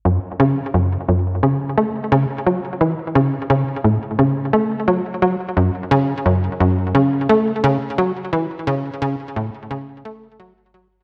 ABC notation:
X:1
M:4/4
L:1/8
Q:1/4=87
K:F#m
V:1 name="Analog synth bass" clef=bass
F,, C, F,, F,, C, A, C, F, | E, C, C, A,, C, A, F, F, | F,, C, F,, F,, C, A, C, F, | E, C, C, A,, C, A, F, F, |]